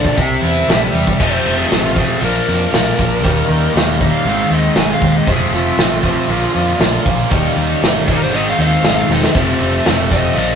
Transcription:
Already playing: A#1 A#2 D3 F3 D4 D5
0.05 kick
0.15 C2 C3 E5, kick, open hi-hat
0.41 E2 C4 E4, open hi-hat
0.68 A#1 C3 G3, snare, open hi-hat
0.93 E2 C3 G3, open hi-hat
1.07 kick
1.18 F1 F2 C3 F3 A3 C4 D#5, kick, crash
1.33 C5
1.43 F1 F3 A3 C4, open hi-hat
1.58 G#4
1.68 A1 C3 F3 A3 C4, snare, open hi-hat
1.85 F4
1.95 F2 C3 F3 A3 C4 G#4, kick, open hi-hat
2.20 A#1 A#2 F3 A#3 D4, open hi-hat
2.25 A#4
2.46 F2 A#2 F3 A#3 D4, snare, open hi-hat
2.72 A#1 A#2 F3 A#3 D4, snare, open hi-hat
2.97 A#1 F3 A#3 D4, kick, open hi-hat
3.23 D#2 D#3 G3 A#3 D#4, kick, open hi-hat
3.48 D#2 G3 A#3 D#4, open hi-hat
3.74 D#2 D#3 G3 A#3 D#4, snare, open hi-hat
4.00 D#3 G3 A#3 D#4 F5, kick, open hi-hat
4.25 G#1 G#2 D#3 G#3 C4, open hi-hat
4.29 D#4
4.50 D#2 D#3 G#3 C4 D#4, open hi-hat
4.55 G#2
4.59 D#5
4.75 G#1 D#3, snare, open hi-hat
4.79 G#3 C4 D#4 G#5
4.93 F5
5.01 D#2 G#3 C4 D#4, kick, open hi-hat
5.17 D#5
5.27 F1 F2 C3 F3 A3 C4 F4, kick, open hi-hat
5.32 G#4
5.51 F1 F4, open hi-hat
5.55 A3 C4 F4
5.77 A1 F3 A3 C4 F4, snare, open hi-hat
6.02 F3 A3 C4 F4, kick, open hi-hat
6.28 A#1 A#2 D3 F3 A#3 F4, open hi-hat
6.54 F2 A#2 D3 F3 A#3 F4, open hi-hat
6.79 A#1 D3 F3 A#3 F4, snare, open hi-hat
7.05 A#1 F3 A#3 F4, kick, open hi-hat
7.29 D#2 D#3 G3 A#3 D#4, kick, open hi-hat
7.56 D#2 G3 A#3 D#4, open hi-hat
7.82 G1 D#3 G3 A#3 D#4, snare, open hi-hat
8.08 D#3 G3 A#3 D#4 A#4, kick, open hi-hat
8.22 C5
8.32 G#1 G#2 D#3 G#3 C4 D#4 D#5, open hi-hat
8.50 F5
8.57 D#2 G#2 D#3 G#3 C4 D#4, snare, open hi-hat
8.61 F5
8.82 G#1 D#3 G#3 C4 D#4, snare, open hi-hat
9.08 E1 G#3 C4 D#4, snare
9.23 snare
9.33 F1 F2 C3 F3 A3 C4, kick, open hi-hat
9.58 F1 F3 A3 C4, open hi-hat, tambourine
9.84 F1 C3 F3 A3 C4, snare, open hi-hat, tambourine
10.09 F2 C3 F3 A3 C4 D#5, kick, open hi-hat, tambourine
10.35 A#1 A#2 F3 A#3 D4, open hi-hat, tambourine

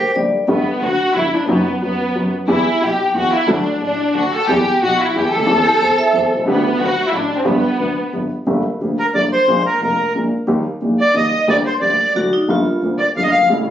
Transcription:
Already playing: G4
0.00 C5
0.16 G1 G2 D3 G3 A#3 G4 D5
0.48 G1 G2 D3 A3 B3 G4
0.82 D2 D3 F#4
1.15 G1 G2 E4
1.33 D4
1.48 F#1 F#2 D#3 F#3 B3 F#4
1.82 F#1 F#2 F#3 B3
2.15 F#1 F#2 F#3
2.48 E2 E3 G3 B3 E4 G4
2.81 B1 B2 G4
3.15 E2 E3 F#4
3.33 E4
3.47 D2 D3 F#3 A3 D4 F#4
3.81 A1 A2 D4
4.14 D2 D3 F#4
4.33 A4
4.48 E2 E3 G3 B3 G4
4.82 B1 B2 F#4
5.01 E4
5.15 E2 E3 G4
5.32 D2 A4
5.36 C#2 D2
5.44 D#2 E2 E3 A3 C4 A4
5.49 E2
5.66 G4
5.80 E2 E3 C5
5.98 E5
6.13 E2 E3 C5
6.31 B1 C2
6.39 C2
6.44 C#2 D2 D3 G3 B3 G4
6.50 B3
6.80 D2 D3 F#4
7.07 E4
7.12 A1 A2 D4
7.37 C4
7.45 G1 G2 D3 G3 B3 G4
7.79 D2 D3
8.13 G1 G2
8.47 G1 G2 D3 A3 A#3 G4
8.81 D2 D3 A3 A#3 G4
8.98 A#4
9.14 G1 G2 D3 A3 A#3 G4 D5
9.33 C5
9.47 A#1 A#2 D3 G#3 A#3 F4
9.66 A#4
9.81 F1 F2 D3 G#3 A#3 F4 A#4
10.14 A#1 A#2 D3 G#3 A#3 F4
10.47 D#2 D#3 G3 A#3 G4
10.81 A#1 A#2 D#3 G3 A#3 G4
11.00 D5
11.14 D#2 D#3 G3 A#3 G4 D#5
11.48 D2 D3 G3 A#3 G4 D5
11.66 C5
11.81 D2 D3 G3 A#3 G4 D5
12.14 D2 D3 F#3 A3 F#4
12.33 D#4
12.48 G1 G2 D3 G3 A#3 F4
12.82 D2 D3 G3 A#3 F4
12.99 D5
13.17 G1 G2 D3 G3 A#3 F4 F5
13.23 D#5
13.30 G1 F5
13.38 F#1
13.42 G1
13.46 G#1 A1 A2 C#3 G3
13.50 A1 A3 E4

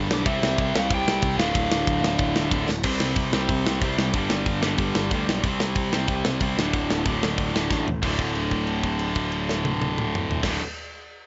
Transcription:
Already playing: G2 D3 G3 D6
0.09 B1 D3 G3, snare
0.13 G2 D6
0.26 C2 C3 G3 C4 E5, kick, ride
0.42 C2, snare
0.58 C2 E5, kick, ride
0.75 C2 F5, snare
0.91 C2, kick, ride
0.95 G5
1.07 C2, snare
1.22 C2, kick, ride
1.38 D1 D2 A2 F5, snare
1.43 D3
1.55 D1, kick, ride
1.70 D1, snare
1.87 D1, kick, ride
2.03 D1, snare
2.19 D1, kick, ride
2.36 D1, snare
2.51 D1 D2 A2 D3, kick, ride
2.69 D1, snare
2.83 C2 C3 G3, kick, crash
2.88 C4
3.00 C2, snare
3.16 C2, kick, open hi-hat
3.32 C2 C3 G3 C4, snare
3.49 C2, kick, open hi-hat
3.67 C2, snare
3.80 C2 C3 G3 C4, kick, open hi-hat
3.99 C2, snare
4.12 G1 G2 D3 G3, kick, open hi-hat
4.30 G1, snare
4.46 G1, kick, open hi-hat
4.61 G1 G2 D3 G3, snare
4.78 G1, kick, open hi-hat
4.95 G1, snare
5.10 D2 G2 D3 G3, kick, open hi-hat
5.29 B1, snare
5.43 C2 C3 G3 C4, kick, open hi-hat
5.60 C2, snare
5.75 C2, kick, open hi-hat
5.92 C2 C3 G3 C4, snare
6.08 C2, kick, open hi-hat
6.25 C2, snare
6.40 C2 C3 G3 C4, kick, open hi-hat
6.57 D1 D2 A2 D3, snare
6.73 D1, kick, open hi-hat
6.90 D1, snare
7.05 D1 D2 A2 D3, kick, open hi-hat
7.23 D1, snare
7.38 D1, kick, open hi-hat
7.54 D1 D2 A2 D3, snare
7.71 A1, kick, snare
7.87 A1, floor tom
8.02 D1 D2 A2, kick, crash
8.06 D3
8.19 kick, crash
8.35 crash
8.51 kick, crash
8.67 crash
8.83 kick, crash
8.99 crash
9.15 kick, crash
9.32 crash
9.49 snare
9.65 high tom
9.82 high tom
9.98 mid tom
10.15 mid tom
10.31 floor tom
10.43 D1 D2 A2 D3, kick, snare, crash

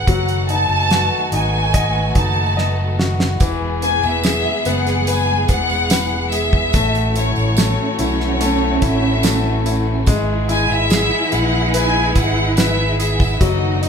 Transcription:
Already playing: B3 F#5
0.07 F#1 D#3 F#3 A3 F#4, kick, closed hi-hat
0.28 closed hi-hat
0.49 D#4 A5, closed hi-hat
0.69 F#1
0.91 F#4, snare, closed hi-hat
1.32 G#1 D#4 G#5, closed hi-hat
1.74 D#5, kick, closed hi-hat
2.15 F#1 D#4 A5, kick, closed hi-hat
2.57 D#5, snare
2.99 F#4, snare
3.20 snare
3.40 E1 E3 G#3 B3 G#4, kick, closed hi-hat, tambourine
3.82 B3 G#5, closed hi-hat, tambourine
4.03 E1 E5, tambourine
4.23 G#3 G#4, snare, closed hi-hat, tambourine
4.65 F#1 B3 F#5, closed hi-hat, tambourine
4.87 snare, closed hi-hat
5.07 B4 G#5, closed hi-hat, tambourine
5.49 E1 B3 F#5, kick, closed hi-hat, tambourine
5.70 tambourine
5.90 B4, snare, closed hi-hat, tambourine
6.32 G#4 E5, closed hi-hat, tambourine
6.53 kick
6.73 A1 A3 C#4 F#4, kick, closed hi-hat, tambourine
6.95 closed hi-hat
7.15 E4 C#5, closed hi-hat, tambourine
7.36 A1, tambourine
7.57 A3 C#4, snare, closed hi-hat, tambourine
7.99 B1 E4 C#5, closed hi-hat, tambourine
8.20 snare
8.41 A3, closed hi-hat, tambourine
8.82 A1 E4 E5, kick, closed hi-hat, tambourine
9.23 A3, snare, closed hi-hat, tambourine
9.66 E4, closed hi-hat, tambourine
10.06 G#1 G#3 B3 E4 G#4, kick, closed hi-hat, tambourine
10.49 E4 G#5, closed hi-hat, tambourine
10.70 G#1 E5, tambourine
10.90 G#4, snare, closed hi-hat, tambourine
11.32 A#1 E4 F#5, closed hi-hat, tambourine
11.74 B4 G#5, closed hi-hat, tambourine
12.15 G#1 E4 F#5, kick, closed hi-hat, tambourine
12.57 B4 E5, snare, closed hi-hat, tambourine
12.99 G#4 E5, closed hi-hat, tambourine
13.20 kick, tambourine
13.41 F#1 D#3 F#3 A3 D#4 F#4 D#5, kick, closed hi-hat, tambourine
13.82 D#4 D#5, closed hi-hat, tambourine

